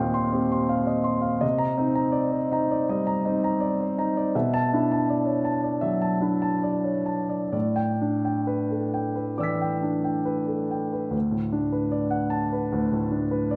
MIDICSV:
0, 0, Header, 1, 2, 480
1, 0, Start_track
1, 0, Tempo, 729040
1, 944, Time_signature, 4, 2, 24, 8
1, 2858, Tempo, 750939
1, 3818, Tempo, 802139
1, 4298, Tempo, 913242
1, 5738, Tempo, 879765
1, 6698, Tempo, 781250
1, 8183, End_track
2, 0, Start_track
2, 0, Title_t, "Grand piano"
2, 0, Program_c, 0, 0
2, 0, Control_c, 0, 64, 127
2, 0, Note_on_c, 0, 39, 51
2, 0, Note_on_c, 0, 46, 47
2, 0, Note_on_c, 0, 60, 45
2, 0, Note_on_c, 0, 67, 44
2, 0, Note_on_c, 0, 75, 39
2, 0, Note_on_c, 0, 77, 50
2, 0, Note_on_c, 0, 79, 51
2, 0, Note_on_c, 0, 84, 49
2, 92, Note_off_c, 0, 84, 0
2, 92, Note_on_c, 0, 84, 51
2, 173, Note_off_c, 0, 79, 0
2, 213, Note_off_c, 0, 60, 0
2, 213, Note_on_c, 0, 60, 45
2, 217, Note_off_c, 0, 67, 0
2, 217, Note_on_c, 0, 67, 43
2, 297, Note_off_c, 0, 84, 0
2, 342, Note_on_c, 0, 84, 49
2, 372, Note_off_c, 0, 46, 0
2, 419, Note_off_c, 0, 67, 0
2, 455, Note_off_c, 0, 77, 0
2, 455, Note_on_c, 0, 77, 47
2, 540, Note_off_c, 0, 84, 0
2, 572, Note_off_c, 0, 75, 0
2, 572, Note_on_c, 0, 75, 41
2, 609, Note_off_c, 0, 60, 0
2, 655, Note_off_c, 0, 77, 0
2, 686, Note_on_c, 0, 84, 46
2, 700, Note_off_c, 0, 75, 0
2, 800, Note_on_c, 0, 77, 48
2, 885, Note_off_c, 0, 84, 0
2, 927, Note_on_c, 0, 75, 53
2, 931, Note_off_c, 0, 77, 0
2, 931, Note_on_c, 0, 48, 54
2, 953, Control_c, 0, 64, 0
2, 957, Note_off_c, 0, 39, 0
2, 1043, Note_on_c, 0, 82, 62
2, 1060, Control_c, 0, 64, 127
2, 1122, Note_off_c, 0, 75, 0
2, 1169, Note_on_c, 0, 60, 46
2, 1176, Note_on_c, 0, 63, 48
2, 1239, Note_off_c, 0, 82, 0
2, 1287, Note_on_c, 0, 82, 50
2, 1366, Note_off_c, 0, 63, 0
2, 1395, Note_on_c, 0, 74, 50
2, 1484, Note_off_c, 0, 82, 0
2, 1529, Note_on_c, 0, 72, 39
2, 1557, Note_off_c, 0, 60, 0
2, 1600, Note_off_c, 0, 74, 0
2, 1655, Note_off_c, 0, 72, 0
2, 1657, Note_on_c, 0, 63, 46
2, 1664, Note_on_c, 0, 82, 49
2, 1784, Note_on_c, 0, 74, 49
2, 1856, Note_off_c, 0, 82, 0
2, 1869, Note_off_c, 0, 48, 0
2, 1905, Note_on_c, 0, 55, 45
2, 1906, Note_on_c, 0, 75, 53
2, 1976, Note_off_c, 0, 74, 0
2, 2021, Note_on_c, 0, 82, 51
2, 2046, Note_off_c, 0, 63, 0
2, 2096, Note_off_c, 0, 75, 0
2, 2141, Note_on_c, 0, 63, 47
2, 2148, Note_on_c, 0, 60, 44
2, 2212, Note_off_c, 0, 82, 0
2, 2267, Note_on_c, 0, 82, 51
2, 2286, Note_off_c, 0, 55, 0
2, 2331, Note_off_c, 0, 63, 0
2, 2372, Note_on_c, 0, 74, 48
2, 2453, Note_off_c, 0, 82, 0
2, 2506, Note_on_c, 0, 72, 43
2, 2525, Note_off_c, 0, 60, 0
2, 2566, Note_off_c, 0, 74, 0
2, 2621, Note_off_c, 0, 72, 0
2, 2622, Note_on_c, 0, 63, 43
2, 2625, Note_on_c, 0, 82, 48
2, 2745, Note_on_c, 0, 74, 47
2, 2814, Note_off_c, 0, 82, 0
2, 2860, Note_off_c, 0, 63, 0
2, 2861, Note_off_c, 0, 74, 0
2, 2866, Note_on_c, 0, 47, 56
2, 2868, Control_c, 0, 64, 0
2, 2870, Note_on_c, 0, 76, 51
2, 2983, Note_on_c, 0, 81, 64
2, 2984, Control_c, 0, 64, 127
2, 3052, Note_off_c, 0, 76, 0
2, 3108, Note_on_c, 0, 62, 44
2, 3115, Note_on_c, 0, 64, 48
2, 3169, Note_off_c, 0, 81, 0
2, 3226, Note_on_c, 0, 81, 47
2, 3296, Note_off_c, 0, 64, 0
2, 3342, Note_on_c, 0, 74, 49
2, 3413, Note_off_c, 0, 81, 0
2, 3444, Note_on_c, 0, 73, 39
2, 3486, Note_off_c, 0, 62, 0
2, 3531, Note_off_c, 0, 74, 0
2, 3565, Note_on_c, 0, 81, 46
2, 3570, Note_off_c, 0, 73, 0
2, 3686, Note_on_c, 0, 74, 44
2, 3765, Note_off_c, 0, 81, 0
2, 3797, Note_off_c, 0, 47, 0
2, 3799, Note_on_c, 0, 76, 51
2, 3807, Note_on_c, 0, 54, 44
2, 3882, Note_off_c, 0, 74, 0
2, 3922, Note_on_c, 0, 81, 47
2, 3995, Note_off_c, 0, 76, 0
2, 4040, Note_on_c, 0, 62, 38
2, 4041, Note_on_c, 0, 64, 41
2, 4119, Note_off_c, 0, 81, 0
2, 4163, Note_on_c, 0, 81, 45
2, 4193, Note_off_c, 0, 54, 0
2, 4242, Note_off_c, 0, 64, 0
2, 4290, Note_on_c, 0, 74, 44
2, 4361, Note_off_c, 0, 81, 0
2, 4403, Note_on_c, 0, 73, 37
2, 4428, Note_off_c, 0, 62, 0
2, 4476, Note_off_c, 0, 74, 0
2, 4516, Note_on_c, 0, 81, 40
2, 4522, Note_off_c, 0, 73, 0
2, 4638, Note_on_c, 0, 74, 41
2, 4713, Note_off_c, 0, 81, 0
2, 4752, Note_off_c, 0, 74, 0
2, 4760, Note_on_c, 0, 45, 50
2, 4760, Note_on_c, 0, 74, 44
2, 4778, Control_c, 0, 64, 0
2, 4878, Control_c, 0, 64, 127
2, 4883, Note_on_c, 0, 79, 53
2, 4961, Note_off_c, 0, 74, 0
2, 5018, Note_on_c, 0, 62, 42
2, 5084, Note_off_c, 0, 79, 0
2, 5141, Note_on_c, 0, 79, 42
2, 5214, Note_off_c, 0, 62, 0
2, 5258, Note_on_c, 0, 71, 44
2, 5334, Note_off_c, 0, 79, 0
2, 5381, Note_on_c, 0, 69, 35
2, 5453, Note_off_c, 0, 71, 0
2, 5502, Note_off_c, 0, 69, 0
2, 5503, Note_on_c, 0, 79, 41
2, 5617, Note_on_c, 0, 71, 38
2, 5692, Note_off_c, 0, 79, 0
2, 5713, Note_off_c, 0, 45, 0
2, 5735, Note_on_c, 0, 86, 30
2, 5737, Note_on_c, 0, 52, 38
2, 5740, Note_on_c, 0, 74, 43
2, 5749, Note_on_c, 0, 88, 32
2, 5765, Note_on_c, 0, 95, 31
2, 5808, Note_off_c, 0, 71, 0
2, 5864, Note_on_c, 0, 79, 43
2, 5930, Note_off_c, 0, 74, 0
2, 5979, Note_on_c, 0, 62, 38
2, 6053, Note_off_c, 0, 79, 0
2, 6098, Note_on_c, 0, 79, 38
2, 6122, Note_off_c, 0, 52, 0
2, 6172, Note_off_c, 0, 62, 0
2, 6213, Note_on_c, 0, 71, 42
2, 6293, Note_off_c, 0, 79, 0
2, 6332, Note_on_c, 0, 69, 33
2, 6413, Note_off_c, 0, 71, 0
2, 6461, Note_off_c, 0, 69, 0
2, 6462, Note_on_c, 0, 79, 39
2, 6581, Note_on_c, 0, 71, 38
2, 6651, Note_off_c, 0, 79, 0
2, 6674, Note_off_c, 0, 86, 0
2, 6678, Note_on_c, 0, 38, 47
2, 6681, Note_off_c, 0, 88, 0
2, 6689, Note_off_c, 0, 95, 0
2, 6695, Note_off_c, 0, 71, 0
2, 6709, Control_c, 0, 64, 0
2, 6800, Note_on_c, 0, 45, 38
2, 6826, Control_c, 0, 64, 127
2, 6932, Note_on_c, 0, 62, 43
2, 7005, Note_off_c, 0, 45, 0
2, 7055, Note_on_c, 0, 71, 41
2, 7131, Note_off_c, 0, 62, 0
2, 7172, Note_on_c, 0, 74, 43
2, 7253, Note_off_c, 0, 71, 0
2, 7289, Note_on_c, 0, 78, 43
2, 7372, Note_off_c, 0, 74, 0
2, 7409, Note_on_c, 0, 81, 54
2, 7492, Note_off_c, 0, 78, 0
2, 7547, Note_on_c, 0, 71, 42
2, 7613, Note_off_c, 0, 81, 0
2, 7635, Note_off_c, 0, 38, 0
2, 7667, Note_on_c, 0, 38, 48
2, 7741, Note_off_c, 0, 71, 0
2, 7789, Note_on_c, 0, 45, 40
2, 7909, Note_on_c, 0, 62, 39
2, 7977, Note_off_c, 0, 45, 0
2, 8029, Note_on_c, 0, 71, 43
2, 8093, Note_off_c, 0, 62, 0
2, 8150, Note_on_c, 0, 74, 45
2, 8183, Note_off_c, 0, 38, 0
2, 8183, Note_off_c, 0, 71, 0
2, 8183, Note_off_c, 0, 74, 0
2, 8183, End_track
0, 0, End_of_file